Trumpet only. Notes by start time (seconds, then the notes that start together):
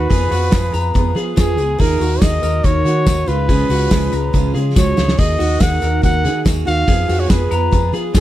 Already playing: B4
1.38 G#4
1.80 A#4
2.22 D#5
2.64 C#5
3.28 B4
4.77 C#5
5.19 D#5
5.61 F#5
6.03 F#5
6.66 F5
7.19 C#5
7.30 B4
8.14 G#4